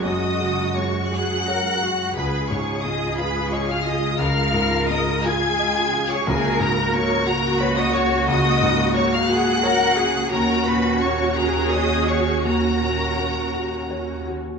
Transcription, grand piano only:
\new Staff \with { instrumentName = "Grand piano" } { \time 6/8 \key fis \major \tempo 4. = 58 <fis, fis'>8 cis8 gis8 fis'8 cis''8 fis'8 | cis,8 gis,8 gis8 eis'8 dis''8 eis'8 | cis,8 gis,8 gis8 eis'8 dis''8 eis'8 | cis,8 gis,8 ais8 fis'8 cis''8 fis'8 |
cis,8 gis,8 ais8 fis'8 cis''8 fis'8 | dis,8 ais,8 ais8 fis'8 cis''8 fis'8 | dis,8 ais,8 ais8 fis'8 cis''8 fis'8 | }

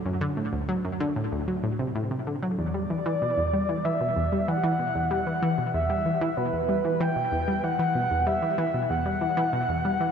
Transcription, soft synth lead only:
\new Staff \with { instrumentName = "Soft synth lead" } { \time 4/4 \key e \minor \tempo 4 = 95 r1 | d''2 e''4 fis''4 | fis''4 e''4 b'4 g''4 | fis''4 e''4 fis''2 | }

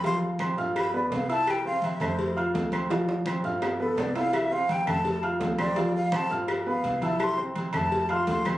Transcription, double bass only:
\new Staff \with { instrumentName = "Double bass" } { \clef bass \time 4/4 \key c \major \tempo 4 = 168 d,4. g,,4. c,4~ | c,4. f,4. d,4~ | d,4. g,,4. c,4~ | c,4. f,4. d,4~ |
d,4. g,,4. c,4~ | c,4. f,4. d,4 | }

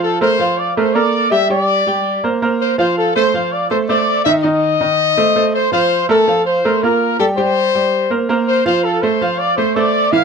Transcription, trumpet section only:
\new Staff \with { instrumentName = "Trumpet section" } { \time 4/4 \key f \lydian \tempo 4 = 164 a'8 c''4 d''8 c''8 d''4 e''8 | d''2~ d''16 r8. c''8 c''8 | a'8 c''4 d''8 c''8 d''4 e''8 | dis''2. c''8 c''8~ |
c''8 a'4 c''4 bes'4 a'8 | c''2~ c''16 r8. c''8 c''8 | a'8 c''4 d''8 c''8 d''4 f''8 | }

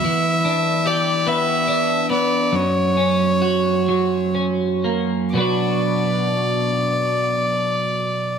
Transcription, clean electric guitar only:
\new Staff \with { instrumentName = "Clean electric guitar" } { \time 6/8 \key b \minor \tempo 4. = 43 e8 d'8 g'8 b8 d'8 b8 | fis,8 cis'8 fis'8 fis8 cis'8 ais8 | <b, fis b d' fis'>2. | }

